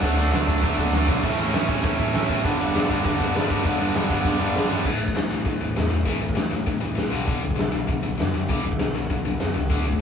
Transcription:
0.02 picked electric bass D2, distorted electric guitar D3 A3 D4, overdriven electric guitar F#3, kick, crash
0.17 distorted electric guitar D3 A3 D4, overdriven electric guitar F#3
0.32 picked electric bass D2, distorted electric guitar D3 A3 D4, overdriven electric guitar F#3, snare, crash
0.47 picked electric bass D2, distorted electric guitar D3 A3 D4, overdriven electric guitar F#3, kick
0.62 picked electric bass D2, distorted electric guitar D3 A3 D4, overdriven electric guitar F#3, kick, crash
0.78 picked electric bass D2, distorted electric guitar D3 A3 D4, overdriven electric guitar F#3, kick
0.92 picked electric bass D2, distorted electric guitar D3 A3 D4, overdriven electric guitar F#3, snare, crash
1.08 picked electric bass B1, distorted electric guitar D3 A3 D4, overdriven electric guitar F#3, kick
1.23 picked electric bass A1, distorted electric guitar A2 E3 A3, overdriven electric guitar C#4 E4, kick, crash
1.38 distorted electric guitar A2 E3 A3, overdriven electric guitar C#4 E4
1.52 picked electric bass A1, distorted electric guitar A2 E3 A3, overdriven electric guitar C#4 E4, snare, crash
1.68 picked electric bass A1, distorted electric guitar A2 E3 A3, overdriven electric guitar C#4 E4, kick
1.82 picked electric bass A1, distorted electric guitar A2 E3 A3, overdriven electric guitar C#4 E4, kick, crash
1.97 picked electric bass A1, distorted electric guitar A2 E3 A3, overdriven electric guitar C#4 E4, kick
2.14 picked electric bass A1, distorted electric guitar A2 E3 A3, overdriven electric guitar C#4 E4, snare, crash
2.28 picked electric bass A1, distorted electric guitar A2 E3 A3, overdriven electric guitar C#4 E4, kick
2.44 picked electric bass G1, distorted electric guitar G2 D3 G3, overdriven electric guitar B3 D4, kick, crash
2.59 distorted electric guitar G2 D3 G3, overdriven electric guitar B3 D4
2.75 picked electric bass G1, distorted electric guitar G2 D3 G3, overdriven electric guitar B3 D4, snare, crash
2.89 picked electric bass G1, distorted electric guitar G2 D3 G3, overdriven electric guitar B3 D4, kick
3.05 picked electric bass G1, distorted electric guitar G2 D3 G3, overdriven electric guitar B3 D4, kick, crash
3.19 picked electric bass G1, distorted electric guitar G2 D3 G3, overdriven electric guitar B3 D4, kick
3.35 picked electric bass G1, distorted electric guitar G2 D3 G3, overdriven electric guitar B3 D4, snare, crash
3.49 picked electric bass G1, distorted electric guitar G2 D3 G3, overdriven electric guitar B3 D4, kick
3.65 picked electric bass G1, distorted electric guitar G2 D3 G3, overdriven electric guitar B3 D4, kick, crash
3.79 distorted electric guitar G2 D3 G3, overdriven electric guitar B3 D4
3.95 picked electric bass G1, distorted electric guitar G2 D3 G3, overdriven electric guitar B3 D4, snare, crash
4.09 picked electric bass G1, distorted electric guitar G2 D3 G3, overdriven electric guitar B3 D4, kick
4.25 picked electric bass G1, distorted electric guitar G2 D3 G3, overdriven electric guitar B3 D4, kick, snare
4.39 picked electric bass G1, distorted electric guitar G2 D3 G3, overdriven electric guitar B3 D4
4.54 picked electric bass G1, distorted electric guitar G2 D3 G3, overdriven electric guitar B3 D4, snare
4.69 picked electric bass G1, distorted electric guitar G2 D3 G3, overdriven electric guitar B3 D4, snare
4.85 picked electric bass A1, distorted electric guitar A2 E3 A3, kick, crash
5.00 picked electric bass A1, distorted electric guitar A2 E3, open hi-hat
5.08 kick
5.15 picked electric bass A1, distorted electric guitar A2 E3, snare, open hi-hat
5.31 picked electric bass A1, distorted electric guitar A2 E3, open hi-hat
5.45 picked electric bass A1, distorted electric guitar A2 E3, kick, open hi-hat
5.61 picked electric bass A1, distorted electric guitar A2 E3, open hi-hat
5.76 picked electric bass E2, distorted electric guitar A2 E3, snare, open hi-hat
5.90 picked electric bass E2, distorted electric guitar A2 E3, open hi-hat
6.05 picked electric bass A1, distorted electric guitar A2 E3 A3, kick, open hi-hat
6.21 picked electric bass A1, distorted electric guitar A2 E3, open hi-hat
6.29 kick
6.35 picked electric bass A1, distorted electric guitar A2 E3, snare, open hi-hat
6.51 picked electric bass A1, distorted electric guitar A2 E3, open hi-hat
6.66 picked electric bass A1, distorted electric guitar A2 E3, kick, open hi-hat
6.81 picked electric bass A1, distorted electric guitar A2 E3, open hi-hat
6.95 picked electric bass A#1, distorted electric guitar A2 E3, snare, open hi-hat
7.10 picked electric bass B1, distorted electric guitar G2 D3 G3, open hi-hat
7.25 picked electric bass B1, distorted electric guitar G2 D3 G3, kick, open hi-hat
7.41 distorted electric guitar G2 D3, open hi-hat
7.45 picked electric bass B1
7.51 kick
7.56 picked electric bass B1, distorted electric guitar G2 D3, snare, open hi-hat
7.72 picked electric bass B1, distorted electric guitar G2 D3, open hi-hat
7.87 picked electric bass B1, distorted electric guitar G2 D3, kick, open hi-hat
8.03 picked electric bass B1, distorted electric guitar G2 D3, open hi-hat
8.18 picked electric bass F#2, distorted electric guitar G2 D3, snare, open hi-hat
8.34 picked electric bass F#2, distorted electric guitar G2 D3, open hi-hat
8.48 picked electric bass B1, distorted electric guitar G2 D3 G3, kick, open hi-hat
8.64 picked electric bass B1, distorted electric guitar G2 D3, open hi-hat
8.72 kick
8.79 picked electric bass B1, distorted electric guitar G2 D3, snare, open hi-hat
8.95 picked electric bass B1, distorted electric guitar G2 D3, open hi-hat
9.10 picked electric bass B1, distorted electric guitar G2 D3, kick, open hi-hat
9.25 picked electric bass B1, distorted electric guitar G2 D3, open hi-hat
9.40 picked electric bass F#2, distorted electric guitar G2 D3, snare, open hi-hat
9.54 picked electric bass C#2, distorted electric guitar G2 D3, open hi-hat
9.69 picked electric bass D2, distorted electric guitar D3 A3 D4, kick, open hi-hat
9.84 picked electric bass D2, distorted electric guitar D3 A3, open hi-hat
9.93 kick

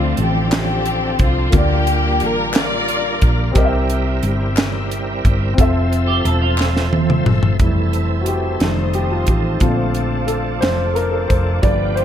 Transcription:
Already playing: fingered electric bass D2, upright piano D3 C4 F4 A4 D5, tonewheel organ F3 C4 D4 A4, string section A3 C4 F4
0.17 fingered electric bass A1, closed hi-hat
0.21 string section G4
0.52 string section C4, snare, clap, closed hi-hat
0.56 string section G4
0.86 closed hi-hat
1.19 fingered electric bass C2, kick, closed hi-hat
1.23 string section F4
1.51 fingered electric bass D2, upright piano D3 A#3 F4, tonewheel organ G3 D4 F4 A4, string section A#3, kick, closed hi-hat
1.55 upright piano G4 D5, string section G4, tonewheel organ A#4
1.87 closed hi-hat
2.20 fingered electric bass A1, closed hi-hat
2.25 string section A#4
2.54 string section F4 A#4, snare, clap, closed hi-hat
2.58 string section D5
2.88 closed hi-hat
3.22 fingered electric bass A#1, kick, closed hi-hat
3.51 upright piano C3 C4 G4, closed hi-hat
3.56 fingered electric bass C2, tonewheel organ G3 C4 E4 A#4, upright piano A#4 D#5, kick
3.65 upright piano E5
3.90 closed hi-hat
4.23 fingered electric bass G1, closed hi-hat
4.57 snare, clap, closed hi-hat
4.91 closed hi-hat
5.25 fingered electric bass G1, kick, closed hi-hat
5.54 upright piano C4 F4
5.58 fingered electric bass F1, tonewheel organ F3 C4 A4 E5, upright piano A4 E5, kick, closed hi-hat
5.93 closed hi-hat
6.07 clean electric guitar G4
6.25 fingered electric bass E1, clean electric guitar A4, closed hi-hat
6.42 clean electric guitar F4
6.58 snare, clap
6.77 snare
6.93 high tom
7.10 mid tom
7.26 fingered electric bass G1, mid tom
7.43 floor tom
7.59 fingered electric bass F1, upright piano E3 G3 A3, tonewheel organ E3 C4 E4 A4, analog synth pad C5 A5 C6 E6, kick, closed hi-hat
7.93 closed hi-hat
8.21 upright piano F#4
8.26 upright piano G4, closed hi-hat
8.60 fingered electric bass F1, upright piano D#3 G3 A3 A4, tonewheel organ F3 C4 D#4 G4, analog synth pad D#6, snare, closed hi-hat
8.68 tonewheel organ A4
8.94 upright piano G4, closed hi-hat
9.11 upright piano F4
9.27 fingered electric bass A1, upright piano G4, kick, closed hi-hat
9.60 fingered electric bass A#1, upright piano D3 A3 C4 F4, tonewheel organ F3 A3 C#4 A4, analog synth pad F5 D6, kick, closed hi-hat
9.68 tonewheel organ D4
9.94 closed hi-hat
10.27 upright piano A4, closed hi-hat
10.61 fingered electric bass F1, upright piano C5, snare, closed hi-hat
10.92 upright piano A4 A#4, closed hi-hat
11.11 upright piano A4
11.28 fingered electric bass F1, upright piano C5, kick, closed hi-hat
11.61 fingered electric bass G1, tonewheel organ F3 B3 D4 G4, upright piano F3 A3 B3 D5, analog synth pad F5 G5 B5, kick, closed hi-hat
11.95 upright piano C5, closed hi-hat

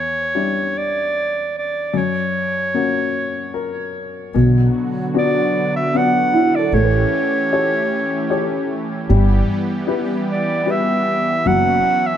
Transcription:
Already playing: upright piano E2, clarinet C#5
0.35 upright piano G3 D4 E4
0.78 clarinet D5
1.58 clarinet D5
1.94 upright piano F#2
1.98 clarinet C#5
2.74 upright piano A#3 C#4 F#4
3.54 upright piano A#4
4.33 upright bass B1, upright piano B2, analog synth pad D3 F#3 B3 F#4
5.14 upright piano B3 D4 F#4, harp F#4
5.19 clarinet D5
5.76 clarinet E5
5.94 upright piano B3 D4 F#4, clarinet F#5
6.34 harp E4
6.55 harp A4, clarinet D5
6.71 upright bass A1, analog synth pad E3 A3 C#4 G4, upright piano A3, clarinet C#5
6.83 harp B4
7.53 upright piano G4 A4 C#5
8.30 upright piano G4 A4 C#5
9.08 upright bass G1, analog synth pad G3 B3 G4, upright piano G3
9.87 upright piano E4 G4 B4
10.32 clarinet D5
10.66 upright piano E4 G4 B4
10.71 clarinet E5
11.45 upright bass F#1, upright piano F#3, analog synth pad C#4 F#4, clarinet F#5
12.07 clarinet E5

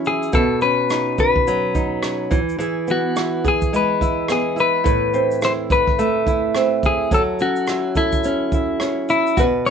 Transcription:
Already playing: nylon-string guitar E3 F#3 C#4 A4
0.05 nylon-string guitar E4, clean electric guitar G#4, shaker
0.23 shaker
0.33 nylon-string guitar B2 B4, clean electric guitar A4, kick, shaker
0.61 nylon-string guitar C#4, clean electric guitar B4, shaker
0.90 nylon-string guitar D#4, cross-stick, shaker
1.18 nylon-string guitar B4, clean electric guitar B4, kick, shaker
1.36 kick
1.47 nylon-string guitar F#3, shaker
1.75 nylon-string guitar D#4, kick, shaker
2.02 nylon-string guitar C#4, cross-stick, shaker
2.31 nylon-string guitar E3, kick, shaker
2.49 shaker
2.59 nylon-string guitar E3 G#4, shaker
2.88 nylon-string guitar B3, clean electric guitar F#4, shaker
3.16 nylon-string guitar E4, cross-stick, shaker
3.44 nylon-string guitar G#4, clean electric guitar G#4, kick, shaker
3.62 kick, shaker
3.73 nylon-string guitar G#3, clean electric guitar B4, shaker
4.01 nylon-string guitar E4, kick, shaker
4.28 nylon-string guitar B3, clean electric guitar G#4, cross-stick, shaker
4.56 nylon-string guitar E4, shaker
4.60 clean electric guitar B4
4.84 nylon-string guitar A2 B4, kick, shaker
5.14 nylon-string guitar C4, shaker
5.31 shaker
5.42 nylon-string guitar E4, clean electric guitar C5, cross-stick, shaker
5.70 nylon-string guitar B4, clean electric guitar B4, kick, shaker
5.87 kick, cross-stick
5.99 nylon-string guitar A3, shaker
6.27 nylon-string guitar E4, kick, shaker
6.55 nylon-string guitar C4, cross-stick, shaker
6.83 nylon-string guitar E4, clean electric guitar G#4, kick, shaker
7.11 nylon-string guitar F#3 A4, clean electric guitar A4, kick, shaker
7.39 nylon-string guitar C#4, clean electric guitar F#4, shaker
7.56 shaker
7.67 nylon-string guitar E4, cross-stick, shaker
7.95 clean electric guitar E4, nylon-string guitar A4, kick, shaker
8.12 kick, shaker
8.24 nylon-string guitar C#4, shaker
8.52 nylon-string guitar E4, kick, shaker
8.80 nylon-string guitar C#4, cross-stick, shaker
9.09 nylon-string guitar E4, clean electric guitar E4, shaker
9.27 shaker
9.37 nylon-string guitar B2 B4, clean electric guitar F#4, kick, shaker
9.66 nylon-string guitar C#4, clean electric guitar C#5, shaker

